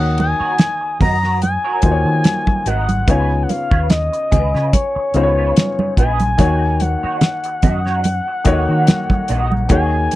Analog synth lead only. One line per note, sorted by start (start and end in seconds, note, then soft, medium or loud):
0.00 0.20 F#5 loud
0.20 0.98 G#5 loud
1.02 1.40 A#5 loud
1.42 2.69 G#5 loud
2.67 3.11 F#5 loud
3.09 3.44 G#5 loud
3.43 3.51 F#5 medium
3.50 3.92 F5 loud
3.90 4.73 D#5 loud
4.73 5.94 C#5 loud
5.98 6.82 G#5 loud
6.81 9.71 F#5 loud
9.72 10.15 G#5 loud